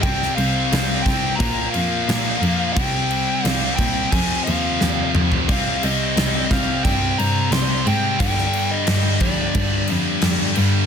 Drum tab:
CC |x-x-x-x-x-x-x-x-|x-x-x-x-x-x-----|x-x-x-x-x-x-x-x-|x-x-x-x-x-x-x-x-|
SD |-o--o-o-----o---|----o-------o---|----o-o-----o---|-o--o-------o---|
T2 |----------------|--------------o-|----------------|----------------|
FT |----------------|---------------o|----------------|----------------|
BD |o-----o-o-------|o-----o-o-------|o-----o-o-------|o-----o-o-------|